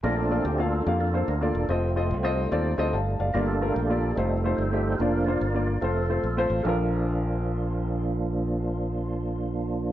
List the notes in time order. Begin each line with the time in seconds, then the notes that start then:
0.03 A#1 A#2 A3 A#3 C4 D4 F4 A4 A#4 D5
0.17 D4 F4 A4
0.30 A#3 F4 A4 D5
0.45 D2 G4
0.58 A#3 D4 F4 A4 F5
0.86 F2 A#3 D4 F4 G4 A4 F5
1.00 D4 F4 A4
1.13 A#3 F4 A4 C5
1.28 D2 A#4
1.41 A#3 D4 F4 A4 D5
1.55 E1
1.69 F1 A3 C4 F4 A4 D#5
1.96 C4 F4 A4 D#5
2.11 C2
2.23 C4 F4 A4 D#5
2.36 G3 A3 D#4
2.51 D#2 C4 F4 A4 D5
2.78 D2 C4 F4 A4 D#5
2.93 G1 F5 A5
3.20 F#1 D5 F5
3.33 G1 G2 A3 A#3 D4 F4 G4 A#4 D5
3.47 D4 F4 A4
3.61 A#3 F4 G4 A#4
3.74 A#1 G4
3.87 A#3 F4 G4 A4 D5
4.11 G#4
4.15 F1 G3 A3 C4 D#4 F4 A4 C5
4.44 A3 D#4 F4 C5
4.57 G1 D#4 A4 C5
4.72 A3 D#4 F4 G4
4.98 F1 F3 A#3 D4 F4 A#4 D5
5.25 A#3 D4 F4 A#4 C5 D5
5.41 G1
5.54 A#3 D4 F4 D5
5.67 A#4
5.81 F1 F3 A3 C4 F4 A4 C5
6.09 A3 C4 F4 C5
6.24 A#1
6.37 A3 C4 F4 C5
6.50 A1
6.63 A#1 F3 A#3 D4 F4 A4
6.67 F4 A#4